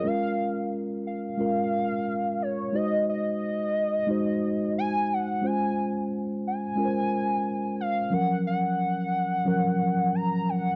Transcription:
X:1
M:4/4
L:1/8
Q:"Swing 16ths" 1/4=89
K:Bbm
V:1 name="Analog synth lead"
f2 z f4 d | e e4- e a g | a2 z a4 f | g g4- g b g |]
V:2 name="Tine electric piano"
[A,DFB]4 [A,DFB]4 | [A,EGc]4 [A,EGc]4 | [A,DFc]4 [A,DFBc]4 | [F,G,DB]4 [F,G,DB]4 |]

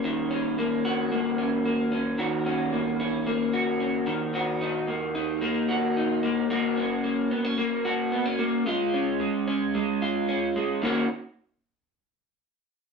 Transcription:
X:1
M:4/4
L:1/16
Q:1/4=111
K:F#
V:1 name="Clean electric guitar"
D,2 C2 A,2 F2 A,2 C2 A,2 C2 | [D,F]2 C2 A,2 C2 A,2 F2 C2 D,2 | [D,F]2 D2 A,2 D2 A,2 F2 D2 A,2 | [A,F]2 C2 A,2 B, C A,2 F2 B, C A,2 |
[G,E]2 C2 G,2 C2 G,2 E2 C2 G,2 | [D,A,CF]2 z12 z2 |]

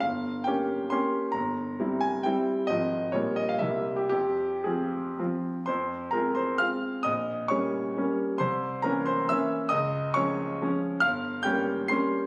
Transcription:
X:1
M:3/4
L:1/16
Q:1/4=134
K:Fm
V:1 name="Grand piano"
f4 g4 c'4 | b6 a2 g4 | e4 d2 e f =e3 G | G4 A6 z2 |
[cc']4 [Bb]2 [cc']2 [ff']4 | [ee']4 [dd']6 z2 | [cc']4 [Bb]2 [cc']2 [=e=e']4 | [ee']4 [dd']6 z2 |
[ff']4 [gg']4 [c'c'']4 |]
V:2 name="Grand piano"
G,,,4 [B,DG]4 [B,DG]4 | G,,,4 [G,C=E]4 [G,CE]4 | [A,,,F,CF]4 [B,,,G,B,F]4 [C,,G,B,=E]4 | F,,4 [F,CF]4 [F,CF]4 |
F,,4 [A,CF]4 [A,CF]4 | B,,,4 [G,B,D]4 [G,B,D]4 | C,,4 [=E,B,D]4 [E,B,D]4 | D,,4 [F,A,D]4 [F,A,D]4 |
G,,,4 [G,B,D]4 [G,B,D]4 |]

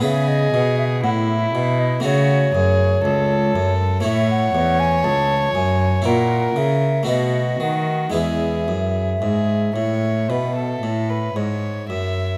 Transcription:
X:1
M:4/4
L:1/16
Q:1/4=59
K:F#dor
V:1 name="Flute"
e d2 e f e2 d c6- c z | [K:E] e f2 g a2 g2 f2 e2 d2 f2 | e12 z4 |]
V:2 name="Violin"
G4 E4 F2 G2 A4 | [K:E] c8 ^A4 F4 | G4 G2 c2 B A2 B c2 e2 |]
V:3 name="Harpsichord"
[B,GB]8 [A,Fc]8 | [K:E] [A,Ec]8 [Ec]4 [A,FB]4 | [G,EB]16 |]
V:4 name="Harpsichord" clef=bass
C,2 B,,2 A,,2 B,,2 C,2 F,,2 C,,2 F,,2 | [K:E] A,,2 E,,2 C,,2 F,,2 ^A,,2 C,2 B,,2 D,2 | E,,2 F,,2 G,,2 A,,2 B,,2 A,,2 G,,2 F,,2 |]
V:5 name="Cello" clef=bass
C,2 B,,2 A,,2 B,,2 C,2 F,,2 C,,2 F,,2 | [K:E] A,,2 E,,2 C,,2 F,,2 ^A,,2 C,2 B,,2 D,2 | E,,2 F,,2 G,,2 A,,2 B,,2 A,,2 G,,2 F,,2 |]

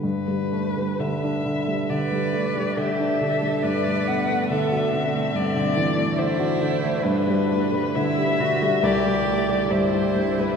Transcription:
X:1
M:4/4
L:1/16
Q:1/4=69
K:G
V:1 name="Violin"
B4 e4 d4 e4 | d2 f2 e4 d4 c4 | B4 e4 d4 c3 B |]
V:2 name="Cello"
z8 B4 G2 A2 | B4 A2 C6 E4 | D4 E2 F2 G4 E4 |]
V:3 name="Grand piano" clef=bass
G,, G, A, G, D, D D, G, D, G, A, G, D, D D, G, | G,, A, B, A, D, F D, A, G,, D, E, A, D, F D, A, | G,, G, A, G, D, G D, G, C,, G, A, G, G,, G G,, G, |]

